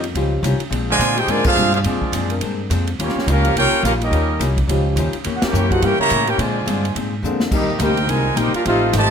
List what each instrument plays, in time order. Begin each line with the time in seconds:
Already playing: upright bass F2
0.04 ride
0.14 upright bass C#2, hollow-body jazz guitar D#3 G3 C#4 F4, trombone section F3 C#4 D#4 G4, ride
0.43 upright bass C2, hollow-body jazz guitar D#3 G3 C#4 F4, hi-hat pedal, ride
0.60 ride
0.70 upright bass A#1, hollow-body jazz guitar A#2 G#3 C4 D4, ride
0.90 trombone section D3 F3 G#3, trumpet section F4 C5 D5 G#5
0.99 upright bass A#2, hollow-body jazz guitar A#2 G#3 C4 D4, hi-hat pedal, ride
1.17 trumpet section D#4 G#4 C5 G5, trombone section G4, ride
1.27 upright bass G#2, hollow-body jazz guitar A#2 G#3 C4 D4, trombone section D3 F3 G#3 C4 D4 A#4, trumpet section F4 C5 D5 G#5, ride
1.44 trombone section G#3 D4 F4, trumpet section D4 G#4 C5 F5, kick, crash
1.55 upright bass G2, hollow-body jazz guitar A#2 G#3 C4 D4, hi-hat pedal
1.73 trombone section G#3 D4 F4, trumpet section D4 G#4 C5 F5, ride
1.84 upright bass F2, hollow-body jazz guitar A#2 G#3 C4 D4, trombone section F3 G#3 D4, trumpet section C4 F4 G#4 D5, ride
2.01 muted upright bass stroke, kick
2.12 upright bass F#2, hollow-body jazz guitar A#2 G#3 C4 D4, hi-hat pedal, ride
2.30 trombone section G#3 C4 D4 A#4, ride
2.41 upright bass G2, hollow-body jazz guitar A#2 G#3 C4 D4, ride
2.70 upright bass F2, hollow-body jazz guitar A#2 G#3 C4 D4, hi-hat pedal, ride
2.87 ride
2.99 upright bass D#2, hollow-body jazz guitar D#3 G3 C#4 F4, trombone section G3 A#3 C#4, trumpet section F4, ride
3.03 trumpet section A#3 G4 C#5
3.09 snare
3.15 muted upright bass stroke, snare
3.26 upright bass C#2, hollow-body jazz guitar D#3 G3 C#4 F4, trombone section A#3 C#4 F4, hi-hat pedal, ride
3.30 trumpet section C#4 G4 A#4 F5
3.43 trombone section F3 C#4 D#4 G4, ride
3.55 upright bass C2, hollow-body jazz guitar D#3 G3 C#4 F4, trombone section A#3 C#4 G4, trumpet section F4 A#4 C#5 G5, ride
3.72 muted upright bass stroke
3.83 upright bass A#1, hollow-body jazz guitar D#3 G3 C#4 F4, trombone section A#3 C#4 F4, trumpet section C#4 G4 A#4 F5, hi-hat pedal, ride
4.01 trombone section G3 A#3 D#4, trumpet section C#4 G4 A#4 D#5, ride
4.11 upright bass D#2, hollow-body jazz guitar D#3 G3 C#4 F4, ride
4.39 upright bass C2, hollow-body jazz guitar D#3 G3 C#4 F4, hi-hat pedal, ride
4.57 kick, ride
4.68 upright bass C#2, hollow-body jazz guitar D#3 G3 C#4 F4, trombone section F3 C#4 D#4 G4, ride
4.96 upright bass D#2, hollow-body jazz guitar D#3 G3 C#4 F4, hi-hat pedal, ride
5.13 muted upright bass stroke, ride
5.24 upright bass E2, hollow-body jazz guitar E3 A#3 C#4 G4, ride
5.35 trumpet section F#5
5.41 trombone section A#3 C#4 G4, trumpet section E4 A#4 C#5 G5, muted upright bass stroke, snare, ride
5.52 upright bass F#2, hollow-body jazz guitar E3 A#3 C#4 G4, hi-hat pedal
5.71 trombone section E3 A#3 C#4 F#4 G4, trumpet section D#4 A4 C5 F#5, kick, ride
5.82 upright bass G2, hollow-body jazz guitar E3 A#3 C#4 G4, trombone section A#3 C#4 G4, trumpet section E4 A#4 C#5 G5, ride
5.99 trombone section C#3 G3 A#3, trumpet section G4 C#5 E5 A#5, muted upright bass stroke
6.10 upright bass A2, hollow-body jazz guitar E3 A#3 C#4 G4, hi-hat pedal, ride
6.27 trombone section A#3 C#4 G4, trumpet section E4 A#4 C#5 G5, ride
6.38 hollow-body jazz guitar A#2 G#3 C4 D4, upright bass A#2, trombone section D3 F3 G#3, trumpet section F4 C5 D5 G#5, ride
6.66 upright bass G2, hollow-body jazz guitar A#2 G#3 C4 D4, hi-hat pedal, ride
6.85 ride
6.95 upright bass G#2, hollow-body jazz guitar A#2 G#3 C4 D4, ride
7.23 upright bass F2, hollow-body jazz guitar A#2 G#3 C4 D4, trombone section D3 A#3 C4 G#4, hi-hat pedal
7.40 snare
7.51 upright bass D#2, hollow-body jazz guitar C3 G3 A#3 D#4, trombone section G3 A#3 D#4, trumpet section C4 G4 A#4 D#5, kick, crash
7.79 upright bass D2, hollow-body jazz guitar C3 G3 A#3 D#4, trombone section D#3 A#3 C4 D#4 G4, trumpet section D#4 A#4 C5 G5, hi-hat pedal, ride
7.97 ride
8.07 upright bass C2, trombone section A#2 D#3 G#3, hollow-body jazz guitar C3 G3 A#3 D#4, trumpet section D#4 A#4 C5 G#5, ride
8.35 upright bass A#1, hollow-body jazz guitar C3 G3 A#3 D#4, trombone section A#3 D#4 G4, trumpet section D#4 A#4 C5 G5, hi-hat pedal, ride
8.53 trumpet section D4 G4 A#4 F5, trombone section F4, muted upright bass stroke, ride
8.64 upright bass A1, trombone section F3 A3 C4 D#4 F4 G4, hollow-body jazz guitar F3 A3 D#4 G4, trumpet section D#4 A4 C5 F5, ride
8.92 upright bass G#1, trombone section C3 D#3 A3, hollow-body jazz guitar F3 A3 D#4 G4, snare, hi-hat pedal, ride
8.96 trumpet section G4 C5 D#5 A5